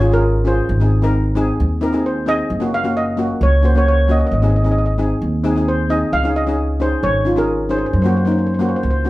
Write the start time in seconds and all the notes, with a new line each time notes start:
Already playing: G#1 C#5
0.00 C#4 F4 G#4
0.12 C#4 F4 G#4 A#4
0.45 C#4 F4 G#4 C5
0.69 G#1
0.80 C4 D#4 G#4
1.02 C4 D#4 A#4
1.35 C4 D#4 G#4
1.60 D#2
1.81 C4 D#4 A#4
1.93 C4 D#4 G#4
2.06 C5
2.26 C4 D#4 G#4 D#5
2.50 F#1
2.60 A#3 C#4 F#4
2.74 F5
2.84 A#3 C#4 F#4
2.97 D#5
3.17 A#3 C#4 F#4
3.41 C#2 C#5
3.62 A#3 C#4 F#4 C5
3.75 A#3 C#4 F#4 C#5
3.88 C#5
4.08 A#3 C#4 F#4 D#5
4.19 D#5
4.27 D#5
4.31 G#1 D#5
4.42 C4 D#4 G#4 D#5
4.50 D#5
4.56 D#5
4.64 C4 D#4 G#4 D#5
4.72 D#5
4.78 D#5
4.86 D#5
4.98 C4 D#4 G#4
5.22 D#2
5.44 C4 D#4 G#4
5.56 C4 D#4 G#4
5.68 C5
5.90 C4 D#4 G#4 D#5
6.12 C#2 F5
6.24 C#4 D#4 G#4
6.36 D#5
6.47 C#4 D#4 G#4
6.80 C#4 D#4 G#4 C5
7.03 G#1 C#5
7.25 C#4 D#4 F4
7.36 C#4 D#4 G#4 A#4
7.69 C#4 D#4 G#4 C5
7.78 C5
7.86 C5
7.93 F#2 C5
8.02 A#3 C#4 F#4 C5
8.09 C5
8.17 C5
8.25 A#3 C#4 D#4 C5
8.32 C5
8.39 C5
8.46 C5
8.54 C5
8.59 A#3 C#4 F#4 C5
8.69 C5
8.76 C5
8.83 C#2 C5
8.91 C5
9.04 A#3 C#4 F#4